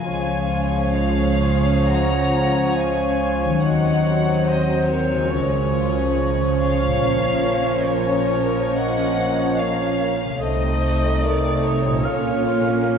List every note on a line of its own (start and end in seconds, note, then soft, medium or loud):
0.00 0.10 F#2 soft
0.00 3.57 C#3 soft
0.00 3.59 F3 soft
0.00 3.61 F4 soft
0.00 3.64 C#5 soft
0.00 0.97 F5 medium
0.00 0.91 G#5 medium
0.06 3.58 C#2 soft
0.06 3.59 C#3 soft
0.06 3.59 F3 soft
0.06 0.26 G#3 soft
0.06 3.59 C#4 soft
0.06 4.43 C#4 medium
0.06 3.58 G#4 soft
0.06 4.49 C#5 soft
0.29 0.51 C#4 soft
0.51 0.73 F4 soft
0.74 0.95 C#4 soft
0.94 1.17 G#3 soft
0.94 1.89 C#5 medium
0.94 1.85 F5 medium
1.18 1.41 C#4 soft
1.40 1.64 F4 soft
1.64 1.87 C#4 soft
1.87 2.08 G#3 soft
1.87 2.78 F#5 medium
1.87 2.76 A#5 medium
2.10 2.32 C#4 soft
2.33 2.54 F4 soft
2.56 2.77 C#4 soft
2.76 2.99 G#3 soft
2.76 3.63 F5 medium
2.76 3.63 G#5 medium
2.99 3.20 C#4 soft
3.20 3.41 F4 soft
3.42 5.27 D#3 soft
3.42 3.63 C#4 soft
3.50 5.29 F#3 soft
3.54 5.31 D#4 soft
3.59 5.33 F#3 soft
3.59 5.33 C5 soft
3.59 4.45 F#5 medium
3.63 5.29 D#2 soft
3.63 5.29 D#3 soft
3.63 6.14 F#3 soft
3.63 5.29 F#3 soft
3.63 5.29 C4 soft
3.63 3.83 C4 soft
3.63 5.33 C5 soft
3.63 4.48 D#5 medium
3.85 4.06 D#4 soft
4.07 4.27 C4 soft
4.27 4.48 D#4 soft
4.47 5.32 C4 medium
4.47 4.69 C4 soft
4.47 4.89 C5 soft
4.47 5.32 C5 soft
4.47 4.89 D#5 medium
4.69 4.90 D#4 soft
4.89 5.11 C4 soft
4.89 6.16 A#4 medium
4.89 6.15 C#5 medium
5.13 6.97 C#3 soft
5.13 5.33 D#4 soft
5.19 7.00 G#3 soft
5.23 6.93 F4 soft
5.28 10.15 F3 medium
5.28 10.25 F3 medium
5.28 10.25 C#4 medium
5.28 6.98 C#5 soft
5.28 10.15 C#5 soft
5.32 7.03 C#2 soft
5.32 7.03 C#3 medium
5.32 5.53 G#3 soft
5.32 10.43 C#4 soft
5.32 7.04 G#4 soft
5.55 5.76 C#4 soft
5.77 5.98 F4 soft
5.98 6.19 C#4 soft
6.17 10.43 F3 soft
6.17 6.39 G#3 soft
6.39 6.61 C#4 soft
6.59 6.82 F4 soft
6.59 7.87 C#5 medium
6.59 7.81 F5 medium
6.82 10.37 A#2 soft
6.82 7.03 C#4 soft
6.90 10.39 A#3 soft
6.94 10.41 F4 soft
6.99 10.42 A#1 medium
6.99 10.44 C#5 soft
7.03 10.43 A#2 medium
7.03 7.23 A#3 soft
7.03 10.43 A#4 soft
7.24 7.44 C#4 soft
7.42 7.63 A#3 soft
7.64 7.85 C#4 soft
7.84 8.07 A#3 soft
7.84 8.76 A#4 medium
7.84 8.75 C#5 medium
8.06 8.30 C#4 soft
8.30 8.53 A#3 soft
8.53 8.75 C#4 soft
8.74 8.95 A#3 soft
8.74 9.61 D#5 medium
8.74 9.60 F#5 medium
8.96 9.18 C#4 soft
9.18 9.39 A#3 soft
9.39 9.60 C#4 soft
9.59 9.81 A#3 soft
9.59 10.44 C#5 medium
9.59 10.42 F5 medium
9.80 10.01 C#4 soft
10.01 10.22 A#3 soft
10.22 12.00 C3 soft
10.22 10.43 C#4 soft
10.29 12.02 A3 soft
10.33 12.05 A4 soft
10.38 12.02 C3 soft
10.38 12.02 A3 soft
10.38 12.07 A3 medium
10.38 12.02 A3 medium
10.38 12.02 C4 medium
10.38 12.07 D#5 soft
10.38 12.06 D#5 medium
10.42 12.02 C2 medium
10.42 10.61 A3 soft
10.42 12.02 D#4 medium
10.42 12.02 A4 medium
10.42 11.23 C5 medium
10.42 11.22 D#5 medium
10.63 10.83 C4 soft
10.82 11.03 D#4 medium
11.03 11.24 C4 soft
11.23 11.44 A3 soft
11.23 11.63 A#4 medium
11.23 11.65 D5 medium
11.44 11.64 C4 soft
11.64 11.85 D#4 soft
11.64 12.86 A4 medium
11.64 12.89 C#5 medium
11.84 12.98 A#2 soft
11.84 12.05 C4 soft
11.92 12.98 C#4 soft
11.96 12.98 A#4 soft
12.01 12.98 F5 soft
12.01 12.98 F5 medium
12.05 12.98 A#1 medium
12.05 12.98 A#2 medium
12.05 12.25 A#3 soft
12.05 12.98 A#3 medium
12.05 12.98 C#4 medium
12.05 12.98 F4 medium
12.05 12.45 F4 medium
12.26 12.47 C#4 soft
12.47 12.68 F4 medium
12.68 12.89 C#4 soft
12.89 12.98 A#3 medium